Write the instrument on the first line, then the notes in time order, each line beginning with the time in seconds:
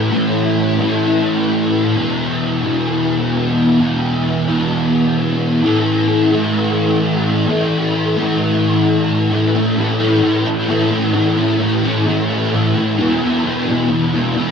distorted electric guitar
Already playing: E3 A3
0.11 A2 E3 A3
0.80 A2 E3 A3
1.95 E2 B2 E3
2.64 E2 B2 E3
3.79 E2 B2 E3
4.47 E2 B2 E3
5.62 A2 E3 A3
6.32 A2 E3 A3
7.47 A2 E3 A3
8.17 A2 E3 A3
9.31 A2 E3 A3
9.53 E3 A3
9.77 A2 E3 A3
9.99 E3 A3
10.22 A2 E3 A3
10.45 E3 A3
10.68 A2 E3 A3
10.91 E3 A3
11.14 A2 E3 A3
11.37 E3 A3
11.59 A2 E3 A3
11.83 E3 A3
12.06 A2 E3 A3
12.29 E3 A3
12.52 A2 E3 A3
12.75 E3 A3
12.97 E2 B2 E3
13.20 B2 E3
13.44 E2 B2 E3
13.67 B2 E3
13.89 E2 B2 E3
14.13 B2 E3
14.35 E2 B2 E3